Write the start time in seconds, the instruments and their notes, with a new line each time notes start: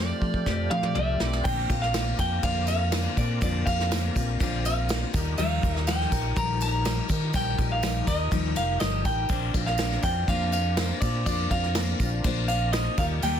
Already playing: fingered electric bass F2, steel-string acoustic guitar F3 A3, tonewheel organ A3 F4 G4, clean electric guitar C5
0.00 steel-string acoustic guitar C4 G4, electric slide guitar D5
0.21 fingered electric bass F3, steel-string acoustic guitar A3 C4 G4, kick, open hi-hat
0.34 kick
0.46 fingered electric bass F2, steel-string acoustic guitar F3 A3 C4 G4, kick, snare
0.70 fingered electric bass F3, steel-string acoustic guitar A3 C4 G4, clean electric guitar F5, electric slide guitar F5, mid tom
0.83 electric slide guitar D5, mid tom
0.95 fingered electric bass C2, steel-string acoustic guitar F3 A3 C4 G4, clean electric guitar E5, mid tom
1.14 tonewheel organ G3 A3
1.19 fingered electric bass B1, steel-string acoustic guitar A3 C4 G4, tonewheel organ B3 C4, electric slide guitar D5, snare
1.25 tonewheel organ D4 E4
1.30 tonewheel organ F4 G4, snare
1.37 tonewheel organ A4 B4
1.41 steel-string acoustic guitar A#2 D3 A#3 C4 F4, tonewheel organ C4 D4 A#4 C5, clean electric guitar G5, kick, crash
1.46 fingered electric bass A#1, tambourine
1.68 fingered electric bass A#1, steel-string acoustic guitar A#3 C4 F4, kick, ride, tambourine
1.82 clean electric guitar F5, snare
1.93 steel-string acoustic guitar D3 A#3 C4 F4, snare, ride, tambourine
2.17 fingered electric bass F2, steel-string acoustic guitar A#3 C4 F4, clean electric guitar G5, kick, ride, tambourine
2.43 fingered electric bass F2, steel-string acoustic guitar A#2 D3 A#3 C4 F4, clean electric guitar F5, kick, ride
2.67 steel-string acoustic guitar A#3 C4 F4, clean electric guitar F5, ride, tambourine
2.92 steel-string acoustic guitar D3 A#3 C4 F4, snare, ride, tambourine
3.16 fingered electric bass A#2, steel-string acoustic guitar A#3 C4 F4, clean electric guitar D5, kick, ride, tambourine
3.41 fingered electric bass F2, steel-string acoustic guitar A#2 D3 A#3 C4 F4, clean electric guitar D5, kick, ride, tambourine
3.66 fingered electric bass F2, steel-string acoustic guitar A#3 C4 F4, clean electric guitar F5, kick, ride, tambourine
3.80 snare
3.91 steel-string acoustic guitar D3 A#3 C4 F4, snare, ride, tambourine
4.15 fingered electric bass A#1, steel-string acoustic guitar A#3 C4 F4, kick, ride, tambourine
4.40 fingered electric bass A#1, steel-string acoustic guitar A#2 D3 A#3 C4 F4, kick, ride
4.64 steel-string acoustic guitar A#3 C4 F4, clean electric guitar F5, ride, tambourine
4.88 steel-string acoustic guitar D3 A#3 C4 F4, snare, ride, tambourine
5.13 fingered electric bass D#2, steel-string acoustic guitar G3 D#4 A#4, tonewheel organ D#4 F4 G4, kick, ride, tambourine
5.38 fingered electric bass D#2, steel-string acoustic guitar D#3 F3 G3 D#4 A#4, clean electric guitar F5, crash, tambourine
5.62 fingered electric bass D#2, steel-string acoustic guitar G3 D#4 A#4, kick, ride, tambourine
5.76 snare
5.87 steel-string acoustic guitar F3 G3 D#4 A#4, clean electric guitar G5, snare, ride, tambourine
6.01 snare
6.11 fingered electric bass A#1, steel-string acoustic guitar G3 D#4 A#4, kick, ride, tambourine
6.36 fingered electric bass A#1, steel-string acoustic guitar D#3 F3 G3 D#4 A#4, clean electric guitar A#5, kick, ride
6.60 steel-string acoustic guitar G3 D#4 A#4, clean electric guitar A#5, ride, tambourine
6.84 steel-string acoustic guitar F3 G3 D#4 A#4, snare, ride, tambourine
7.08 fingered electric bass D#3, steel-string acoustic guitar G3 D#4 A#4, kick, ride, tambourine
7.33 fingered electric bass A#1, steel-string acoustic guitar D#3 F3 G3 D#4 A#4, clean electric guitar G5, kick, ride, tambourine
7.57 fingered electric bass A#1, steel-string acoustic guitar G3 D#4 A#4, kick, ride
7.72 clean electric guitar F5
7.82 steel-string acoustic guitar F3 G3 D#4 A#4, snare, ride, tambourine
8.06 fingered electric bass D#2, steel-string acoustic guitar G3 D#4 A#4, clean electric guitar D#5, kick, ride, tambourine
8.31 fingered electric bass D#2, steel-string acoustic guitar D#3 F3 G3 D#4 A#4, kick, ride, tambourine
8.55 fingered electric bass F1, steel-string acoustic guitar G3 D#4 A#4, clean electric guitar F5, ride, tambourine
8.80 fingered electric bass G1, steel-string acoustic guitar F3 G3 D#4 A#4, clean electric guitar D#5, snare, ride, tambourine
9.05 fingered electric bass A1, steel-string acoustic guitar G3 D#4 A#4, clean electric guitar G5, kick, ride, tambourine
9.29 fingered electric bass A#1, steel-string acoustic guitar A#3 D4 F4 C5, tonewheel organ C4 D4 A#4, kick, tambourine, crash
9.54 fingered electric bass A#1, steel-string acoustic guitar D4 F4 C5, kick, ride, tambourine
9.66 clean electric guitar F5, snare
9.78 steel-string acoustic guitar A#3 D4 F4 C5, snare, ride, tambourine
9.92 snare
10.03 fingered electric bass F2, steel-string acoustic guitar D4 F4 C5, clean electric guitar G5, kick, ride, tambourine
10.28 fingered electric bass F2, steel-string acoustic guitar A#3 D4 F4 C5, clean electric guitar F5, kick, ride
10.52 steel-string acoustic guitar D4 F4 C5, clean electric guitar F5, ride, tambourine
10.77 steel-string acoustic guitar A#3 D4 F4 C5, snare, ride, tambourine
11.01 fingered electric bass A#2, steel-string acoustic guitar D4 F4 C5, clean electric guitar D5, kick, ride, tambourine
11.26 fingered electric bass F2, steel-string acoustic guitar A#3 D4 F4 C5, clean electric guitar D5, kick, ride, tambourine
11.51 fingered electric bass F2, steel-string acoustic guitar D4 F4 C5, clean electric guitar F5, kick, ride, tambourine
11.64 snare
11.75 steel-string acoustic guitar A#3 D4 F4 C5, snare, ride, tambourine
12.00 fingered electric bass A#1, steel-string acoustic guitar D4 F4 C5, kick, ride, tambourine
12.24 fingered electric bass A#1, steel-string acoustic guitar A#3 D4 F4 C5, kick, ride
12.48 steel-string acoustic guitar D4 F4, clean electric guitar F5, ride, tambourine
12.73 steel-string acoustic guitar A#3 D4 F4 C5, clean electric guitar D#5, snare, ride, tambourine
12.97 fingered electric bass D#2, steel-string acoustic guitar G3 F4 A#4, tonewheel organ D#4 F4 G4, clean electric guitar F5, kick, ride, tambourine
13.22 fingered electric bass D#2, steel-string acoustic guitar D#3 G3 A#3 F4 A#4, clean electric guitar G5, crash, tambourine